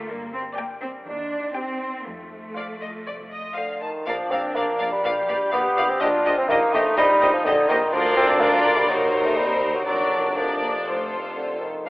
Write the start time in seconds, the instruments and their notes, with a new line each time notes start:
Already playing: harp D3 A#3 F4 A#4
0.08 double bass section G2, harp G2, cello section A#3
0.25 harp G3
0.33 cello section C4
0.42 harp G4
0.56 harp G3, cello section A#3, viola section G4, violin section D5 G5
0.74 harp D5
0.81 cello section C4
0.90 harp G3
1.06 double bass section D#2, harp D#3, cello section D4
1.23 harp C4
1.40 harp G4
1.54 cello section C4, harp C4, viola section G4, violin section C5 G5
1.72 harp C5
1.88 harp C4
2.05 double bass section F2, harp F3, cello section A3
2.23 harp F4
2.40 harp C5
2.55 harp F4, viola section C5, violin section D5 F5
2.73 harp C5
2.82 violin section D#5
2.90 harp F4
3.07 double bass section C2, harp C4, violin section D5
3.24 harp F4
3.31 violin section D#5
3.40 harp C5
3.56 bassoon D3, harp F4, viola section C5, violin section F5
3.74 harp C5
3.81 bassoon D#3, violin section A5
3.90 harp F4
4.06 double bass section A#1, tuba A#1, cello section A#2, harp A#2, bassoon F3, viola section D4, violin section A#4 D5 F5
4.24 harp F3
4.31 double bass section A#1, tuba A#1, cello section A#2, bassoon C4, violin section A#4 D5 F5
4.40 harp D4
4.56 tuba A#1, double bass section A#1, cello section A#2, bassoon A#3, harp F4, violin section A#4 D5 F5
4.72 harp A#4
4.80 tuba A#1, double bass section A#1, cello section A#2, violin section A#4 D5 F5
4.89 bassoon G3, harp D4
5.04 double bass section A#1, tuba A#1, cello section A#2, harp A#2, viola section G4, violin section B4 D5 F5
5.20 harp F3
5.28 double bass section A#1, tuba A#1, cello section A#2, violin section B4 D5 F5
5.36 harp D4
5.52 double bass section A#1, tuba A#1, cello section A#2, bassoon B3, harp F4, violin section B4 D5 F5
5.77 double bass section A#1, tuba A#1, cello section A#2, violin section B4 D5 F5
5.85 harp D4
5.89 bassoon C4
6.01 double bass section A#1, tuba A#1, cello section A#2, harp A#2, bassoon D4, viola section F4, violin section G4 C5 D#5
6.17 harp G3
6.25 tuba A#1, double bass section A#1, cello section A#2, violin section G4 C5 D#5
6.33 harp C4
6.38 bassoon C4
6.49 double bass section A#1, tuba A#1, cello section A#2, bassoon A#3, harp D#4, viola section D#4, violin section G4 C5 D#5
6.65 harp C5
6.73 double bass section A#1, tuba A#1, cello section A#2, bassoon A3, violin section G4 C5 D#5
6.81 harp C4
6.97 tuba A#1, double bass section A#1, cello section A#2, harp A#2, bassoon G3, violin section G4 C5 D#5
7.13 harp G3
7.21 double bass section A#1, tuba A#1, cello section A#2, violin section G4 C5 D#5
7.30 bassoon F3, harp C4
7.45 double bass section A#1, tuba A#1, cello section A#2, bassoon D3, harp D#4, violin section G4 C5 D#5
7.62 harp C5
7.69 tuba A#1, double bass section A#1, cello section A#2, bassoon D#3, violin section G4 C5 D#5
7.78 harp C4
7.93 cello section D2, tuba D2, double bass section D2, harp D3, bassoon F3, viola section D4, violin section F4 A#4 D5
8.09 harp A#3
8.17 bassoon C4
8.25 harp D4
8.41 bassoon A#3, violin section F4 A#4 D5, harp F4
8.73 bassoon G3, harp D4
8.89 tuba D#2, double bass section D#2, cello section D#2, harp D#3, bassoon F#3, viola section A#3, violin section D#4 A#4 C5
9.05 harp A#3
9.22 bassoon A3, harp C4
9.37 bassoon G3, viola section C4, harp D#4
9.54 harp A#4
9.70 harp C4
9.75 bassoon F#3
9.86 tuba F1, double bass section F1, cello section F2, harp F3, bassoon F#3, violin section D4 A#4 D5, viola section D4
10.03 harp A#3
10.20 harp D4
10.36 cello section F2, bassoon F3, violin section D4 A#4 D5, harp A#4
10.61 cello section A#2
10.70 harp A#3
10.86 cello section A2, harp F3, violin section F4 A4 C5
11.03 harp C4
11.20 cello section F2, harp F4
11.36 bassoon D3, harp A4
11.53 harp C5
11.61 bassoon D#3
11.70 harp F4
11.85 tuba A#1, double bass section A#1, cello section A#2, bassoon F3, violin section A#4